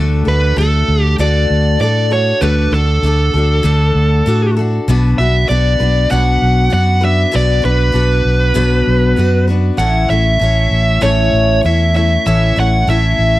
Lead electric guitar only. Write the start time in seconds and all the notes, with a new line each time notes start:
0.28 B4
0.58 A4
1.02 G4
1.20 D5
1.81 D5
2.13 C#5
2.41 B4
2.74 A4
5.18 E5
5.49 D5
6.11 F#5
6.73 F#5
7.04 E5
7.36 D5
7.65 B4
9.78 F#5
10.10 E5
11.03 C#5
11.66 E5
11.96 E5
12.27 E5
12.60 F#5
12.90 E5